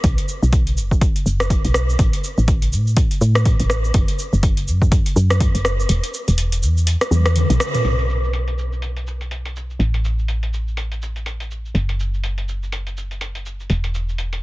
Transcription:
0.04 B1, kick, closed hi-hat, cabasa
0.18 closed hi-hat
0.29 cabasa
0.43 B1, cabasa
0.53 kick, closed hi-hat, cabasa
0.67 closed hi-hat
0.77 F#1, cabasa
0.91 kick, cabasa
1.01 kick, closed hi-hat, cabasa
1.16 closed hi-hat, cabasa
1.26 F#1, cabasa
1.40 cross-stick, closed hi-hat, cabasa
1.50 kick, closed hi-hat, cabasa
1.65 B1, closed hi-hat, cabasa
1.74 cross-stick, cabasa
1.90 cabasa
1.99 A1, kick, closed hi-hat, cabasa
2.13 closed hi-hat
2.24 cabasa
2.38 A1, cabasa
2.48 kick, closed hi-hat, cabasa
2.62 closed hi-hat
2.72 A2, cabasa
2.87 cabasa
2.97 kick, closed hi-hat, cabasa
3.11 closed hi-hat, cabasa
3.21 A2, cabasa
3.35 cross-stick, closed hi-hat, cabasa
3.45 kick, closed hi-hat, cabasa
3.60 A1, closed hi-hat, cabasa
3.70 cross-stick, cabasa
3.85 cabasa
3.94 F#1, kick, closed hi-hat, cabasa
4.08 closed hi-hat
4.19 cabasa
4.33 F#1, cabasa
4.43 kick, closed hi-hat, cabasa
4.57 closed hi-hat
4.67 F#2, cabasa
4.82 kick, cabasa
4.92 kick, closed hi-hat, cabasa
5.06 closed hi-hat, cabasa
5.16 F#2, cabasa
5.30 cross-stick, closed hi-hat, cabasa
5.40 kick, closed hi-hat, cabasa
5.55 F#1, closed hi-hat, cabasa
5.65 cross-stick, cabasa
5.80 cabasa
5.89 E1, closed hi-hat, cabasa
6.04 closed hi-hat, cabasa
6.14 cabasa
6.28 E1, closed hi-hat, cabasa
6.38 closed hi-hat, cabasa
6.52 closed hi-hat, cabasa
6.62 E2, cabasa
6.77 cabasa
6.87 closed hi-hat, cabasa
7.01 cross-stick, closed hi-hat, cabasa
7.11 E2, high tom, cabasa
7.26 cross-stick, closed hi-hat, cabasa
7.36 closed hi-hat, mid tom, cabasa
7.50 B1, closed hi-hat, mid tom, cabasa
7.60 cross-stick, cabasa
7.75 closed hi-hat, mid tom, cabasa
7.84 B1, closed hi-hat, cabasa
7.99 closed hi-hat
8.10 cabasa
8.24 cabasa
8.33 closed hi-hat, cabasa
8.48 closed hi-hat
8.58 cabasa
8.73 cabasa
8.82 closed hi-hat, cabasa
8.97 closed hi-hat, cabasa
9.07 cabasa
9.21 closed hi-hat, cabasa
9.31 closed hi-hat, cabasa
9.45 closed hi-hat, cabasa
9.56 cabasa
9.70 cabasa
9.79 A1, closed hi-hat, cabasa
9.94 closed hi-hat
10.05 cabasa
10.19 cabasa
10.28 closed hi-hat, cabasa
10.43 closed hi-hat
10.54 cabasa
10.68 cabasa
10.77 closed hi-hat, cabasa
10.92 closed hi-hat, cabasa
11.02 cabasa
11.16 closed hi-hat, cabasa
11.26 closed hi-hat, cabasa
11.40 closed hi-hat, cabasa
11.51 cabasa
11.65 cabasa
11.75 F#1, closed hi-hat, cabasa
11.89 closed hi-hat
12.00 cabasa
12.14 cabasa
12.24 closed hi-hat, cabasa
12.38 closed hi-hat
12.49 cabasa
12.63 cabasa
12.72 closed hi-hat, cabasa
12.87 closed hi-hat, cabasa
12.97 cabasa
13.11 closed hi-hat, cabasa
13.21 closed hi-hat, cabasa
13.35 closed hi-hat, cabasa
13.46 cabasa
13.60 cabasa
13.70 E1, closed hi-hat, cabasa
13.84 closed hi-hat, cabasa
13.94 cabasa
14.09 cabasa
14.18 closed hi-hat, cabasa
14.33 closed hi-hat

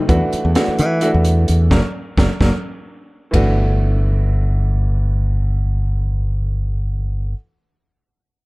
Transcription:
0.09 E2 E3 A3 D4 F#4, kick, closed hi-hat
0.33 muted fingered electric bass stroke, closed hi-hat
0.45 E2
0.55 E3 A3 D4 F#4, snare, closed hi-hat
0.68 muted fingered electric bass stroke
0.79 E3, closed hi-hat
1.01 E3 A3 D4 F#4, closed hi-hat
1.14 E2
1.25 closed hi-hat
1.48 E2, closed hi-hat
1.71 F#1 F#3 A#3 D4, kick, snare
2.17 F#1 F#3 A#3 D4, kick, snare
2.40 F#1 F#3 A#3 D4, kick, snare
3.31 G1 E3 A3 D4, kick, ride
3.35 F#4

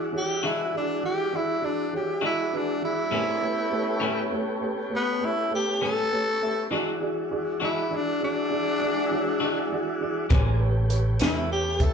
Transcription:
Already playing: G#3 D4 E4 F#4
0.12 E3 F#4 G#4 C#5
0.17 G4
0.43 E3 G#3 D4 E4 F#4 G#4 E5
0.74 E3 D4 F#4 G#4 D5
1.03 E3 F#4 G4 G#4 D5
1.33 E3 E4 F#4 G#4 D5
1.62 E3 D4 F#4 G#4 D5
1.93 E3 F#4 G4 G#4 C#5
2.21 E3 G#3 D4 E4 F#4 G#4 D5
2.53 E3 D4 F#4 G#4 B4
2.82 E3 E4 F#4 G#4 D5
3.11 A2 G3 A3 A#3 B3 C4 C#4 D4 G4 G#4 B4 C#5
3.41 A3 B3 C#4 G4 B4 C#5
3.71 A3 G4 B4 C#5
4.00 A2 G3 A3 B3 C#4 G4 B4 C#5
4.30 A3 G4 B4 C#5
4.61 A3 G4 B4 C#5
4.90 A3 G4 B4 C#5
4.96 B3
5.20 A3 G4 B4 C#5
5.25 E4
5.51 A3 G4 B4 C#5
5.81 A2 G3 A3 B3 C#4 G4 A4 B4 C#5
6.12 A3 G4 B4 C#5
6.41 A3 G4 B4 E5
6.70 E3 G#3 D4 E4 F#4 G#4 D5
7.00 E3 F#4 G#4 D5
7.31 E3 F#4 G#4 D5
7.60 E3 G#3 D4 E4 F#4 G#4 D5
7.90 E3 F#4 G#4 D5
7.95 D4
8.21 E3 D4 F#4 G#4 D5
8.50 E3 F#4 G#4 D5
8.81 E3 F#4 G#4 D5
9.11 E3 F#4 G#4 C#5
9.40 E3 G#3 D4 F#4 G#4 D5
9.72 E3 F#4 G#4 D5
10.01 E3 F#4 G#4 D5
10.30 A1 A2 G3 A#3 B3 C4 C#4 D4 G4 G#4 B4 C#5, kick, closed hi-hat
10.59 A3 B3 C#4 G4 B4 C#5
10.90 G4 B4 C#5, closed hi-hat
11.19 E2 A2 G3 B3 C#4 G4 B4 C#5, snare, closed hi-hat
11.25 E4
11.50 G4 B4 C#5
11.80 G4 A4 B4 E5, kick, closed hi-hat

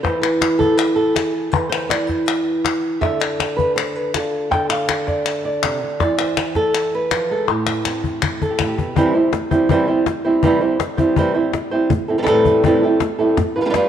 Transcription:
0.03 E3 C5, cajon bass, cajon slap, clap
0.22 B4, clap
0.41 cajon slap, clap
0.59 A4, cajon bass
0.77 B4, clap
0.96 A4
1.15 G#4, cajon slap, clap
1.33 A4
1.52 E3 B4, cajon bass, clap
1.69 C5, cajon slap, clap
1.89 D5, cajon slap, clap
2.07 C5, cajon bass, cajon slap
2.26 B4, clap
2.65 cajon slap, clap
3.01 D3 E5, cajon bass, cajon slap, clap
3.20 D5, cajon slap, clap
3.40 cajon slap, clap
3.57 B4, cajon bass
3.76 C5, clap
3.95 B4
4.14 F4 A4 D5, cajon slap, clap
4.51 D3 G5, cajon bass, cajon slap, clap
4.69 F5, cajon slap, clap
4.89 cajon slap, clap
5.07 D5, cajon bass, cajon slap
5.26 E5, clap
5.45 D5
5.63 C3, cajon slap, clap
5.83 D3
6.00 E3 D5, cajon bass, cajon slap, clap
6.19 C5, cajon slap, clap
6.37 cajon slap, clap
6.55 A4, cajon bass, cajon slap
6.75 clap
6.95 B4
7.11 F3, cajon slap, clap
7.31 G#3 A4
7.48 A2 G4, cajon slap, clap
7.67 cajon slap, clap
7.85 C4, cajon slap, clap
8.04 cajon bass
8.22 cajon bass, clap
8.42 A4, cajon bass
8.51 G4
8.59 A2 F4, cajon bass, clap
8.68 G4
8.78 B2, cajon bass
8.96 C3 E3 G3 C4 E4 C5, cajon bass
9.14 G3 C4 E4 C5
9.32 muted nylon-string guitar stroke, cajon slap
9.51 G3 C4 E4 C5, cajon bass
9.69 C3 E3 G3 C4 E4 C5, cajon bass
9.88 G3 C4 E4 C5
10.06 muted nylon-string guitar stroke, cajon slap
10.25 G3 C4 E4 C5
10.43 C3 E3 G3 C4 E4 C5, cajon bass
10.61 G3 C4 E4 C5, cajon slap
10.79 muted nylon-string guitar stroke, cajon slap
10.97 G3 C4 E4 C5, cajon bass
11.16 C3 E3 G3 C4 E4 C5, cajon bass
11.34 G3 C4 E4 C5
11.53 muted nylon-string guitar stroke, cajon slap
11.71 G3 C4 E4 C5
11.90 muted nylon-string guitar stroke, cajon bass
12.08 G3 C4 E4 A4, cajon slap
12.18 E3 G3 C4 E4 A4
12.22 E3 G3 C4 E4 A4, cajon slap
12.27 A2 E3 G3 C4 E4 A4
12.45 cajon bass
12.64 A2 E3 G3 C4 E4 A4, cajon bass
12.83 G3 C4 E4 A4
13.00 muted nylon-string guitar stroke, cajon slap
13.19 G3 C4 E4 A4
13.37 muted nylon-string guitar stroke, cajon bass, cajon slap
13.56 D4 F4 B4, cajon slap
13.61 G3 D4 F4 B4
13.65 G3 D4 F4 B4
13.70 G3 D4 F4 B4
13.74 G3 D4 F4 B4, cajon slap

